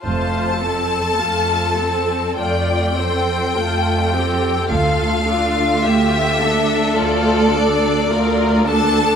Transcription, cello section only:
X:1
M:4/4
L:1/8
Q:1/4=52
K:F
V:1 name="Cello section" clef=bass
F,,2 F,,2 F,,2 F,,2 | D,,2 D,,2 D,,2 D,,2 |]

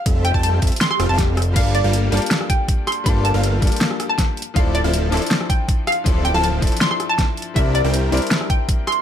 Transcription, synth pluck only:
X:1
M:4/4
L:1/16
Q:1/4=160
K:Dm
V:1 name="Synth pluck"
z2 g a a z3 c' c' z a4 z | f2 d2 z6 g2 z2 c'2 | c'2 a4 z4 z a3 z2 | f2 d2 z6 g2 z2 f2 |
z2 g a a z3 c' c' z a4 z | e2 d2 z6 g2 z2 c'2 |]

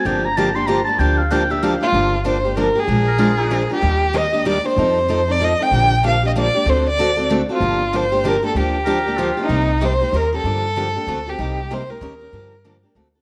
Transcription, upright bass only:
X:1
M:3/4
L:1/8
Q:"Swing" 1/4=191
K:Gm
V:1 name="Upright bass" clef=bass
G,,,6 | D,,6 | G,,,6 | B,,,6 |
E,,6 | F,,6 | B,,,6 | D,,6 |
G,,,6 | D,,6 | C,,4 E,,2 | G,,4 D,,2 |
C,,4 E,,2 | G,,4 D,,2 |]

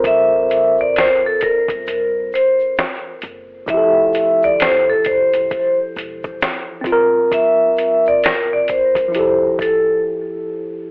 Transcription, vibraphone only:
X:1
M:4/4
L:1/16
Q:"Swing 16ths" 1/4=66
K:F
V:1 name="Vibraphone"
e3 d c A B4 c2 z4 | e3 d c A c3 z6 z | e3 d B d c4 A2 z4 |]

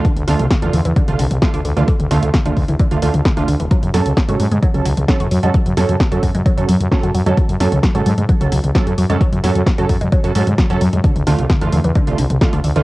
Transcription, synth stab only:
X:1
M:4/4
L:1/16
Q:1/4=131
K:F#m
V:1 name="Synth stab"
z2 [D,A,=F]2 z [D,A,F]2 z2 [D,A,F] z2 [D,A,F]2 z [D,A,F] | z2 [D,A,=F]2 z [D,A,F]2 z2 [D,A,F] [D,A,F] z2 [D,A,F] z2 | z2 [F,CA]2 z [F,CA]2 z2 [F,CA] z2 [F,CA]2 z [F,CA] | z2 [F,CA]2 z [F,CA]2 z2 [F,CA] z2 [F,CA]2 z [F,CA] |
z2 [F,CA]2 z [F,CA]2 z2 [F,CA] z2 [F,CA]2 z [F,CA] | z2 [F,CA]2 z [F,CA]2 z2 [F,CA] [F,CA] z2 [F,CA] z2 | z2 [D,A,=F]2 z [D,A,F]2 z2 [D,A,F] z2 [D,A,F]2 z [D,A,F] |]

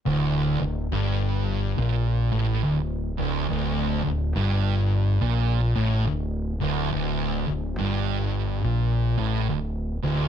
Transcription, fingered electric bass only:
X:1
M:4/4
L:1/8
Q:"Swing" 1/4=70
K:Cdor
V:1 name="Fingered electric bass" clef=bass
D,,, D,,, G,,,2 B,,, A,,, D,,, D,,, | D,,, D,,, G,,,2 B,,, A,,, D,,, D,,, | D,,, D,,, G,,,2 B,,, A,,, D,,, D,,, |]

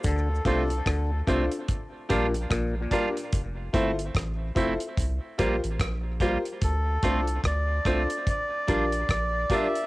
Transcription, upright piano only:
X:1
M:4/4
L:1/8
Q:"Swing 16ths" 1/4=73
K:Dm
V:1 name="Upright piano"
z [DFAc] z [DFAc] z [DFGB] z [DFGB] | z [EFAc] z [EFAc] z [FGBc] z [FGBc] | z [DFAc] z [DFAc] z [DFGB] z [DFGB] |]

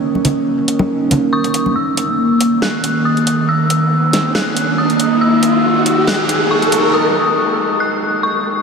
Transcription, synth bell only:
X:1
M:4/4
L:1/8
Q:"Swing 16ths" 1/4=139
K:Ebphr
V:1 name="Synth bell"
z6 [d'e']2 | f'4 g'2 e'2 | f'4 g'2 e'2 | f'4 g'2 d'2 |
e'4 g'2 d'2 |]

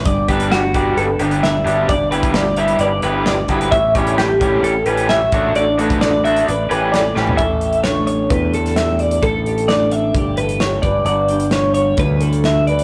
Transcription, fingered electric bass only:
X:1
M:4/4
L:1/8
Q:1/4=131
K:Amix
V:1 name="Fingered electric bass" clef=bass
G,,,4 G,,, G,,,2 G,,, | G,,,4 G,,, G,,,2 G,,, | A,,,4 A,,, A,,,2 A,,, | A,,,4 A,,, A,,,2 A,,, |
A,,,4 E,,4 | A,,,4 G,,,3 G,,, | G,,,4 D,,4 |]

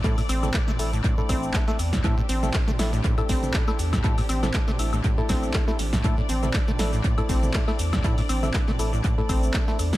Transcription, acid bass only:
X:1
M:4/4
L:1/16
Q:"Swing 16ths" 1/4=120
K:Am
V:1 name="Acid bass" clef=bass
A,, A,, C2 G, A, z A,, A,, A,, C2 G, A, z A,, | A,, A,, C2 G, A, z A,, A,, A,, C2 G, A, z A,, | A,, A,, C2 G, A, z A,, A,, A,, C2 G, A, z A,, | A,, A,, C2 G, A, z A,, A,, A,, C2 G, A, z A,, |
A,, A,, C2 G, A, z A,, A,, A,, C2 G, A, z A,, |]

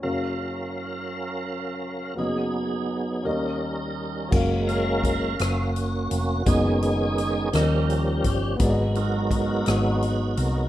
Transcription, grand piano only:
X:1
M:6/8
L:1/8
Q:3/8=56
K:F#
V:1 name="Grand piano"
[CFAe]6 | [B,FGd]3 [C=GAd]3 | [CFAe]6 | [B,FGd]3 [C=GAd]3 |
[B,FG=d^d]6 |]
V:2 name="Grand piano" clef=bass
[F,,,F,,]6 | [F,,,F,,]3 [D,,D,]3 | z6 | z3 D,3 |
G,,3 z3 |]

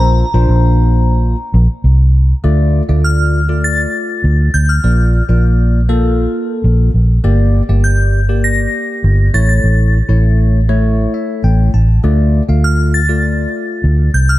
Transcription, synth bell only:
X:1
M:4/4
L:1/16
Q:1/4=100
K:Dm
V:1 name="Synth bell"
b8- b2 z6 | z4 f'4 a'6 g' f'- | f'8- f'3 z4 z | z4 g'4 b'6 a' a'- |
a'8- a'3 z4 z | z4 f'2 a'8 g' f' |]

